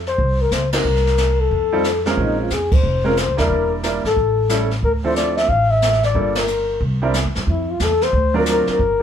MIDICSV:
0, 0, Header, 1, 6, 480
1, 0, Start_track
1, 0, Tempo, 331309
1, 1226, Time_signature, 4, 2, 24, 8
1, 13074, End_track
2, 0, Start_track
2, 0, Title_t, "Flugelhorn"
2, 0, Program_c, 0, 56
2, 109, Note_on_c, 0, 72, 87
2, 603, Note_on_c, 0, 70, 80
2, 625, Note_off_c, 0, 72, 0
2, 763, Note_on_c, 0, 72, 84
2, 784, Note_off_c, 0, 70, 0
2, 1048, Note_off_c, 0, 72, 0
2, 1057, Note_on_c, 0, 70, 78
2, 2036, Note_on_c, 0, 69, 96
2, 2057, Note_off_c, 0, 70, 0
2, 2986, Note_off_c, 0, 69, 0
2, 3183, Note_on_c, 0, 63, 83
2, 3453, Note_off_c, 0, 63, 0
2, 3483, Note_on_c, 0, 65, 76
2, 3662, Note_on_c, 0, 68, 87
2, 3684, Note_off_c, 0, 65, 0
2, 3964, Note_on_c, 0, 72, 96
2, 3986, Note_off_c, 0, 68, 0
2, 4448, Note_on_c, 0, 70, 83
2, 4470, Note_off_c, 0, 72, 0
2, 4616, Note_on_c, 0, 72, 86
2, 4638, Note_off_c, 0, 70, 0
2, 4907, Note_off_c, 0, 72, 0
2, 4915, Note_on_c, 0, 70, 91
2, 5413, Note_off_c, 0, 70, 0
2, 5886, Note_on_c, 0, 69, 88
2, 6775, Note_off_c, 0, 69, 0
2, 7013, Note_on_c, 0, 70, 87
2, 7146, Note_off_c, 0, 70, 0
2, 7320, Note_on_c, 0, 72, 85
2, 7471, Note_off_c, 0, 72, 0
2, 7486, Note_on_c, 0, 74, 92
2, 7781, Note_on_c, 0, 76, 89
2, 7803, Note_off_c, 0, 74, 0
2, 7954, Note_on_c, 0, 77, 97
2, 7976, Note_off_c, 0, 76, 0
2, 8269, Note_on_c, 0, 76, 101
2, 8291, Note_off_c, 0, 77, 0
2, 8744, Note_off_c, 0, 76, 0
2, 8761, Note_on_c, 0, 74, 89
2, 9240, Note_on_c, 0, 70, 86
2, 9261, Note_off_c, 0, 74, 0
2, 9881, Note_off_c, 0, 70, 0
2, 10854, Note_on_c, 0, 64, 81
2, 11162, Note_on_c, 0, 65, 84
2, 11184, Note_off_c, 0, 64, 0
2, 11339, Note_on_c, 0, 69, 97
2, 11361, Note_off_c, 0, 65, 0
2, 11640, Note_on_c, 0, 72, 110
2, 11662, Note_off_c, 0, 69, 0
2, 12118, Note_off_c, 0, 72, 0
2, 12143, Note_on_c, 0, 70, 91
2, 12206, Note_off_c, 0, 70, 0
2, 12311, Note_on_c, 0, 70, 92
2, 12573, Note_off_c, 0, 70, 0
2, 12616, Note_on_c, 0, 70, 96
2, 13074, Note_off_c, 0, 70, 0
2, 13074, End_track
3, 0, Start_track
3, 0, Title_t, "Grand piano"
3, 0, Program_c, 1, 0
3, 1053, Note_on_c, 1, 58, 59
3, 1056, Note_on_c, 1, 60, 54
3, 1059, Note_on_c, 1, 63, 51
3, 1066, Note_on_c, 1, 66, 51
3, 1066, Note_on_c, 1, 70, 63
3, 1209, Note_off_c, 1, 58, 0
3, 1210, Note_off_c, 1, 60, 0
3, 1212, Note_off_c, 1, 63, 0
3, 1215, Note_off_c, 1, 66, 0
3, 1215, Note_off_c, 1, 70, 0
3, 2499, Note_on_c, 1, 55, 75
3, 2501, Note_on_c, 1, 63, 65
3, 2502, Note_on_c, 1, 60, 65
3, 2511, Note_on_c, 1, 65, 69
3, 2512, Note_on_c, 1, 69, 86
3, 2653, Note_off_c, 1, 55, 0
3, 2654, Note_off_c, 1, 60, 0
3, 2654, Note_off_c, 1, 63, 0
3, 2659, Note_off_c, 1, 65, 0
3, 2659, Note_off_c, 1, 69, 0
3, 2983, Note_on_c, 1, 56, 70
3, 2989, Note_on_c, 1, 60, 65
3, 2990, Note_on_c, 1, 61, 66
3, 2997, Note_on_c, 1, 70, 82
3, 2998, Note_on_c, 1, 65, 65
3, 3599, Note_off_c, 1, 56, 0
3, 3602, Note_off_c, 1, 60, 0
3, 3602, Note_off_c, 1, 61, 0
3, 3606, Note_off_c, 1, 65, 0
3, 3606, Note_off_c, 1, 70, 0
3, 4407, Note_on_c, 1, 56, 66
3, 4414, Note_on_c, 1, 60, 66
3, 4417, Note_on_c, 1, 61, 57
3, 4422, Note_on_c, 1, 65, 65
3, 4425, Note_on_c, 1, 70, 73
3, 4568, Note_off_c, 1, 56, 0
3, 4572, Note_off_c, 1, 60, 0
3, 4573, Note_off_c, 1, 61, 0
3, 4576, Note_off_c, 1, 65, 0
3, 4578, Note_off_c, 1, 70, 0
3, 4883, Note_on_c, 1, 55, 69
3, 4889, Note_on_c, 1, 58, 66
3, 4894, Note_on_c, 1, 62, 65
3, 4901, Note_on_c, 1, 64, 66
3, 4902, Note_on_c, 1, 70, 76
3, 5510, Note_off_c, 1, 55, 0
3, 5513, Note_off_c, 1, 58, 0
3, 5516, Note_off_c, 1, 62, 0
3, 5519, Note_off_c, 1, 64, 0
3, 5519, Note_off_c, 1, 70, 0
3, 5552, Note_on_c, 1, 55, 60
3, 5557, Note_on_c, 1, 62, 59
3, 5559, Note_on_c, 1, 58, 54
3, 5566, Note_on_c, 1, 64, 57
3, 5573, Note_on_c, 1, 70, 68
3, 5828, Note_off_c, 1, 55, 0
3, 5831, Note_off_c, 1, 62, 0
3, 5832, Note_off_c, 1, 58, 0
3, 5835, Note_off_c, 1, 64, 0
3, 5839, Note_off_c, 1, 70, 0
3, 6512, Note_on_c, 1, 55, 64
3, 6516, Note_on_c, 1, 57, 57
3, 6519, Note_on_c, 1, 61, 60
3, 6524, Note_on_c, 1, 64, 55
3, 6527, Note_on_c, 1, 69, 70
3, 6788, Note_off_c, 1, 55, 0
3, 6790, Note_off_c, 1, 57, 0
3, 6792, Note_off_c, 1, 61, 0
3, 6794, Note_off_c, 1, 64, 0
3, 6796, Note_off_c, 1, 69, 0
3, 7304, Note_on_c, 1, 60, 61
3, 7307, Note_on_c, 1, 53, 67
3, 7311, Note_on_c, 1, 62, 60
3, 7315, Note_on_c, 1, 64, 58
3, 7319, Note_on_c, 1, 69, 74
3, 7920, Note_off_c, 1, 60, 0
3, 7922, Note_off_c, 1, 53, 0
3, 7924, Note_off_c, 1, 62, 0
3, 7926, Note_off_c, 1, 64, 0
3, 7928, Note_off_c, 1, 69, 0
3, 8904, Note_on_c, 1, 55, 61
3, 8905, Note_on_c, 1, 58, 58
3, 8915, Note_on_c, 1, 62, 58
3, 8915, Note_on_c, 1, 69, 64
3, 8919, Note_on_c, 1, 65, 57
3, 9184, Note_off_c, 1, 55, 0
3, 9184, Note_off_c, 1, 58, 0
3, 9189, Note_off_c, 1, 62, 0
3, 9189, Note_off_c, 1, 69, 0
3, 9191, Note_off_c, 1, 65, 0
3, 10167, Note_on_c, 1, 55, 66
3, 10174, Note_on_c, 1, 60, 64
3, 10175, Note_on_c, 1, 62, 65
3, 10178, Note_on_c, 1, 64, 65
3, 10186, Note_on_c, 1, 70, 75
3, 10328, Note_off_c, 1, 55, 0
3, 10331, Note_off_c, 1, 60, 0
3, 10332, Note_off_c, 1, 62, 0
3, 10333, Note_off_c, 1, 64, 0
3, 10337, Note_off_c, 1, 70, 0
3, 12086, Note_on_c, 1, 54, 77
3, 12089, Note_on_c, 1, 62, 76
3, 12091, Note_on_c, 1, 60, 69
3, 12102, Note_on_c, 1, 65, 68
3, 12103, Note_on_c, 1, 70, 84
3, 12705, Note_off_c, 1, 54, 0
3, 12707, Note_off_c, 1, 62, 0
3, 12708, Note_off_c, 1, 60, 0
3, 12713, Note_off_c, 1, 65, 0
3, 12713, Note_off_c, 1, 70, 0
3, 13074, End_track
4, 0, Start_track
4, 0, Title_t, "Upright bass"
4, 0, Program_c, 2, 32
4, 0, Note_on_c, 2, 41, 73
4, 214, Note_off_c, 2, 41, 0
4, 266, Note_on_c, 2, 36, 82
4, 712, Note_off_c, 2, 36, 0
4, 743, Note_on_c, 2, 37, 76
4, 1191, Note_off_c, 2, 37, 0
4, 1221, Note_on_c, 2, 36, 76
4, 2137, Note_off_c, 2, 36, 0
4, 2191, Note_on_c, 2, 41, 86
4, 3103, Note_off_c, 2, 41, 0
4, 3151, Note_on_c, 2, 34, 82
4, 3597, Note_off_c, 2, 34, 0
4, 3628, Note_on_c, 2, 41, 72
4, 4076, Note_off_c, 2, 41, 0
4, 4104, Note_on_c, 2, 29, 81
4, 4703, Note_off_c, 2, 29, 0
4, 4750, Note_on_c, 2, 37, 55
4, 4900, Note_off_c, 2, 37, 0
4, 4906, Note_on_c, 2, 39, 67
4, 5057, Note_off_c, 2, 39, 0
4, 5075, Note_on_c, 2, 28, 74
4, 5806, Note_off_c, 2, 28, 0
4, 5857, Note_on_c, 2, 32, 64
4, 6019, Note_off_c, 2, 32, 0
4, 6033, Note_on_c, 2, 33, 79
4, 6945, Note_off_c, 2, 33, 0
4, 6993, Note_on_c, 2, 38, 76
4, 7905, Note_off_c, 2, 38, 0
4, 7950, Note_on_c, 2, 33, 81
4, 8863, Note_off_c, 2, 33, 0
4, 8902, Note_on_c, 2, 31, 81
4, 9817, Note_off_c, 2, 31, 0
4, 9860, Note_on_c, 2, 36, 89
4, 10459, Note_off_c, 2, 36, 0
4, 10506, Note_on_c, 2, 40, 60
4, 10656, Note_off_c, 2, 40, 0
4, 10668, Note_on_c, 2, 42, 67
4, 10817, Note_off_c, 2, 42, 0
4, 10823, Note_on_c, 2, 41, 79
4, 11271, Note_off_c, 2, 41, 0
4, 11301, Note_on_c, 2, 40, 77
4, 11749, Note_off_c, 2, 40, 0
4, 11779, Note_on_c, 2, 38, 84
4, 12511, Note_off_c, 2, 38, 0
4, 12739, Note_on_c, 2, 31, 79
4, 13074, Note_off_c, 2, 31, 0
4, 13074, End_track
5, 0, Start_track
5, 0, Title_t, "Muted upright bass strokes"
5, 12575, Note_on_c, 9, 29, 39
5, 12720, Note_off_c, 9, 29, 0
5, 13074, End_track
6, 0, Start_track
6, 0, Title_t, "Drums"
6, 95, Note_on_c, 9, 38, 35
6, 240, Note_off_c, 9, 38, 0
6, 265, Note_on_c, 9, 36, 30
6, 266, Note_on_c, 9, 25, 46
6, 410, Note_off_c, 9, 36, 0
6, 744, Note_on_c, 9, 44, 55
6, 748, Note_on_c, 9, 38, 62
6, 889, Note_off_c, 9, 44, 0
6, 893, Note_off_c, 9, 38, 0
6, 1050, Note_on_c, 9, 51, 70
6, 1054, Note_on_c, 9, 38, 81
6, 1194, Note_off_c, 9, 51, 0
6, 1199, Note_off_c, 9, 38, 0
6, 1233, Note_off_c, 9, 25, 0
6, 1233, Note_on_c, 9, 25, 42
6, 1390, Note_on_c, 9, 38, 29
6, 1535, Note_off_c, 9, 38, 0
6, 1550, Note_on_c, 9, 38, 41
6, 1695, Note_off_c, 9, 38, 0
6, 1701, Note_on_c, 9, 44, 51
6, 1706, Note_on_c, 9, 38, 55
6, 1846, Note_off_c, 9, 44, 0
6, 1850, Note_off_c, 9, 38, 0
6, 2189, Note_on_c, 9, 36, 32
6, 2192, Note_off_c, 9, 25, 0
6, 2192, Note_on_c, 9, 25, 44
6, 2334, Note_off_c, 9, 36, 0
6, 2665, Note_on_c, 9, 44, 51
6, 2670, Note_on_c, 9, 38, 60
6, 2810, Note_off_c, 9, 44, 0
6, 2815, Note_off_c, 9, 38, 0
6, 2976, Note_on_c, 9, 38, 38
6, 3120, Note_off_c, 9, 38, 0
6, 3151, Note_on_c, 9, 36, 32
6, 3153, Note_off_c, 9, 25, 0
6, 3153, Note_on_c, 9, 25, 52
6, 3296, Note_off_c, 9, 36, 0
6, 3625, Note_on_c, 9, 44, 52
6, 3630, Note_on_c, 9, 38, 52
6, 3770, Note_off_c, 9, 44, 0
6, 3775, Note_off_c, 9, 38, 0
6, 3935, Note_on_c, 9, 49, 67
6, 3938, Note_on_c, 9, 36, 80
6, 4080, Note_off_c, 9, 49, 0
6, 4082, Note_off_c, 9, 36, 0
6, 4116, Note_off_c, 9, 25, 0
6, 4116, Note_on_c, 9, 25, 46
6, 4591, Note_on_c, 9, 44, 57
6, 4595, Note_on_c, 9, 38, 62
6, 4736, Note_off_c, 9, 44, 0
6, 4740, Note_off_c, 9, 38, 0
6, 4897, Note_on_c, 9, 38, 60
6, 5042, Note_off_c, 9, 38, 0
6, 5074, Note_on_c, 9, 36, 31
6, 5081, Note_off_c, 9, 25, 0
6, 5081, Note_on_c, 9, 25, 43
6, 5219, Note_off_c, 9, 36, 0
6, 5552, Note_on_c, 9, 44, 53
6, 5556, Note_on_c, 9, 38, 54
6, 5697, Note_off_c, 9, 44, 0
6, 5701, Note_off_c, 9, 38, 0
6, 5865, Note_on_c, 9, 38, 37
6, 6010, Note_off_c, 9, 38, 0
6, 6034, Note_on_c, 9, 36, 30
6, 6040, Note_off_c, 9, 25, 0
6, 6040, Note_on_c, 9, 25, 39
6, 6179, Note_off_c, 9, 36, 0
6, 6509, Note_on_c, 9, 44, 58
6, 6513, Note_on_c, 9, 38, 61
6, 6654, Note_off_c, 9, 44, 0
6, 6658, Note_off_c, 9, 38, 0
6, 6823, Note_on_c, 9, 38, 38
6, 6968, Note_off_c, 9, 38, 0
6, 6993, Note_on_c, 9, 36, 31
6, 6998, Note_off_c, 9, 25, 0
6, 6998, Note_on_c, 9, 25, 49
6, 7138, Note_off_c, 9, 36, 0
6, 7474, Note_on_c, 9, 44, 47
6, 7478, Note_on_c, 9, 38, 53
6, 7619, Note_off_c, 9, 44, 0
6, 7623, Note_off_c, 9, 38, 0
6, 7784, Note_on_c, 9, 38, 40
6, 7928, Note_off_c, 9, 38, 0
6, 7948, Note_on_c, 9, 36, 31
6, 7953, Note_off_c, 9, 25, 0
6, 7953, Note_on_c, 9, 25, 44
6, 8093, Note_off_c, 9, 36, 0
6, 8430, Note_on_c, 9, 44, 59
6, 8435, Note_on_c, 9, 38, 66
6, 8575, Note_off_c, 9, 44, 0
6, 8579, Note_off_c, 9, 38, 0
6, 8589, Note_on_c, 9, 38, 30
6, 8734, Note_off_c, 9, 38, 0
6, 8735, Note_on_c, 9, 38, 36
6, 8746, Note_off_c, 9, 38, 0
6, 8746, Note_on_c, 9, 38, 47
6, 8891, Note_off_c, 9, 38, 0
6, 8903, Note_off_c, 9, 25, 0
6, 8903, Note_on_c, 9, 25, 46
6, 8904, Note_on_c, 9, 36, 32
6, 9049, Note_off_c, 9, 36, 0
6, 9201, Note_on_c, 9, 51, 58
6, 9206, Note_on_c, 9, 38, 72
6, 9346, Note_off_c, 9, 51, 0
6, 9351, Note_off_c, 9, 38, 0
6, 9378, Note_on_c, 9, 44, 47
6, 9523, Note_off_c, 9, 44, 0
6, 9860, Note_off_c, 9, 25, 0
6, 9860, Note_on_c, 9, 25, 45
6, 9862, Note_on_c, 9, 36, 32
6, 10007, Note_off_c, 9, 36, 0
6, 10339, Note_on_c, 9, 44, 55
6, 10344, Note_on_c, 9, 38, 61
6, 10484, Note_off_c, 9, 44, 0
6, 10489, Note_off_c, 9, 38, 0
6, 10650, Note_on_c, 9, 38, 39
6, 10795, Note_off_c, 9, 38, 0
6, 10822, Note_off_c, 9, 25, 0
6, 10822, Note_on_c, 9, 25, 45
6, 10822, Note_on_c, 9, 36, 33
6, 10967, Note_off_c, 9, 36, 0
6, 11294, Note_on_c, 9, 44, 56
6, 11298, Note_on_c, 9, 38, 58
6, 11439, Note_off_c, 9, 44, 0
6, 11443, Note_off_c, 9, 38, 0
6, 11609, Note_on_c, 9, 38, 50
6, 11754, Note_off_c, 9, 38, 0
6, 11776, Note_off_c, 9, 25, 0
6, 11776, Note_on_c, 9, 25, 42
6, 11779, Note_on_c, 9, 36, 33
6, 11923, Note_off_c, 9, 36, 0
6, 12251, Note_on_c, 9, 44, 65
6, 12256, Note_on_c, 9, 38, 63
6, 12396, Note_off_c, 9, 44, 0
6, 12401, Note_off_c, 9, 38, 0
6, 12564, Note_on_c, 9, 38, 49
6, 12709, Note_off_c, 9, 38, 0
6, 12738, Note_on_c, 9, 36, 34
6, 12740, Note_off_c, 9, 25, 0
6, 12740, Note_on_c, 9, 25, 44
6, 12883, Note_off_c, 9, 36, 0
6, 13074, Note_off_c, 9, 25, 0
6, 13074, End_track
0, 0, End_of_file